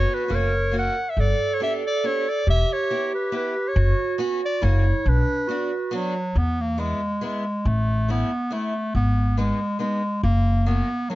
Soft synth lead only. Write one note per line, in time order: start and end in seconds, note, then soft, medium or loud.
0.00 0.32 F#4 loud
0.31 0.98 A#4 loud
1.17 2.43 A4 loud
2.47 3.72 G4 loud
3.76 4.63 F#4 loud
4.61 5.05 E4 medium
5.06 5.49 D4 medium
5.47 6.15 F#4 medium